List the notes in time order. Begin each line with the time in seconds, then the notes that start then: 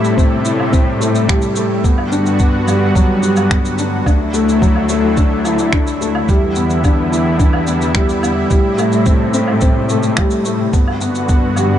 Already playing: A2 C3 G3 A3 E4
0.04 shaker
0.17 C4, kick, shaker
0.45 E4, shaker
0.60 low woodblock
0.72 C4, kick, shaker
1.00 A3, shaker
1.15 shaker
1.28 G3, finger snap, kick, low woodblock
1.42 shaker
1.56 A3, shaker
1.84 G2 D3 B3 F#4, kick, shaker
1.98 low woodblock
2.12 D4, shaker
2.26 shaker
2.39 B3, kick, shaker
2.67 G3, low woodblock, shaker
2.95 F#3, kick, shaker
3.23 G3, shaker
3.36 low woodblock, shaker
3.51 B3, finger snap, kick
3.65 shaker
3.78 D4, shaker
4.06 D2 D3 F#3 A3 D4 E4, kick, low woodblock, shaker
4.34 A3, shaker
4.49 shaker
4.62 F#3, kick, shaker
4.76 low woodblock
4.89 A3, shaker
5.17 D4, kick, shaker
5.45 E4, low woodblock, shaker
5.59 shaker
5.73 D4, finger snap, kick
5.87 shaker
6.01 A3, shaker
6.15 low woodblock
6.28 E2 D3 G3 B3, kick, shaker
6.55 B3, shaker
6.70 shaker
6.84 D4, kick, low woodblock, shaker
7.12 E4, shaker
7.39 D4, kick, shaker
7.53 low woodblock
7.67 B3, shaker
7.82 shaker
7.95 G3, finger snap, kick
8.09 shaker
8.23 B3, low woodblock, shaker
8.50 A2 C3 G3 A3, kick, shaker
8.78 A3, low woodblock, shaker
8.92 shaker
9.06 C4, kick, shaker
9.34 C4, shaker
9.48 low woodblock
9.61 C4, kick, shaker
9.89 A3, shaker
10.03 shaker
10.17 G3, finger snap, kick, low woodblock
10.31 shaker
10.45 A3, shaker
10.73 G2 D3 B3 F#4, kick, shaker
10.88 low woodblock
11.01 B3, shaker
11.15 shaker
11.29 B3, kick, shaker
11.56 G3, low woodblock, shaker